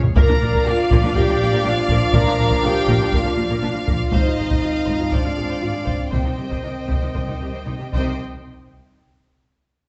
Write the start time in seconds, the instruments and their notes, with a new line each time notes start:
0.04 taiko low
0.16 double bass section A#1, cello section A#2, trombone section F3 D4, viola section A#4 D5, french horn section A#4, violin section F5 A#5, taiko
0.29 cello section A#2, viola section D4
0.41 double bass section A#1, cello section A#2, viola section F4
0.53 cello section A#2, viola section A#4, taiko
0.66 double bass section A#1, cello section A#2, viola section D4, french horn section F4, violin section F5
0.90 double bass section A#1, cello section A#2, viola section A#4, taiko
1.03 cello section A#2, viola section D4
1.15 double bass section A#1, cello section A#2, french horn section G4, viola section A#4, violin section G5, taiko
1.29 cello section A#2, viola section D4
1.40 double bass section A#1, cello section A#2, viola section F4
1.52 cello section A#2, viola section A#4
1.63 double bass section A#1, cello section A#2, viola section D4, french horn section F4, violin section F5
1.78 cello section A#2, viola section F4
1.88 double bass section A#1, cello section A#2, viola section A#4, taiko
2.13 double bass section A#1, cello section A#2, viola section A#4, french horn section A#4, violin section A#5, taiko
2.27 cello section A#2, viola section D4
2.39 double bass section A#1, cello section A#2, viola section F4
2.51 cello section A#2, viola section A#4, taiko
2.63 double bass section A#1, cello section A#2, viola section D4, french horn section G4, violin section G5
2.88 double bass section A#1, cello section A#2, viola section A#4, taiko
3.01 cello section A#2, viola section D4
3.12 double bass section A#1, cello section A#2, viola section A#4, violin section F5, taiko
3.17 french horn section F4
3.25 cello section A#2, viola section D4
3.37 double bass section A#1, cello section A#2, viola section F4
3.50 cello section A#2, viola section A#4
3.62 double bass section A#1, cello section A#2, viola section D4, french horn section F4, violin section F5
3.74 cello section A#2, viola section F4
3.86 double bass section A#1, cello section A#2, viola section A#4, taiko
4.11 double bass section G#1, cello section G#2, trombone section F3 C4, french horn section D#4, viola section C5, violin section D#5 F5, taiko
4.25 cello section G#2, viola section F4
4.37 double bass section G#1, cello section G#2, viola section G#4
4.49 cello section G#2, viola section C5, taiko
4.61 double bass section G#1, cello section G#2, viola section F4
4.85 double bass section G#1, cello section G#2, viola section C5, taiko
4.99 cello section G#2, viola section F4
5.11 double bass section G#1, cello section G#2, viola section C5, violin section D5, taiko
5.15 french horn section D4
5.24 cello section G#2, viola section F4
5.36 double bass section G#1, cello section G#2, viola section G#4
5.49 cello section G#2, viola section C5
5.61 double bass section G#1, cello section G#2, viola section F4
5.73 cello section G#2, viola section G#4
5.85 double bass section G#1, cello section G#2, viola section C5, taiko
6.11 double bass section C2, cello section C3, trombone section D#3, french horn section C4, viola section C5 D#5, violin section C5 G5, taiko
6.25 cello section C3, viola section D#4
6.36 double bass section C2, cello section C3, viola section G4
6.49 cello section C3, viola section C5, taiko
6.62 double bass section C2, cello section C3, viola section D#4
6.88 double bass section C2, cello section C3, viola section C5, taiko
7.01 cello section C3, viola section D#4
7.14 double bass section C2, cello section C3, viola section C5, taiko
7.27 cello section C3, viola section D#4
7.40 double bass section C2, cello section C3, viola section G4
7.53 cello section C3, viola section C5
7.66 double bass section C2, cello section C3, viola section D#4
7.78 cello section C3, viola section G4
7.92 double bass section C2, cello section C3, trombone section D#3 C4, french horn section C4, viola section C5 D#5, violin section C5 G5, taiko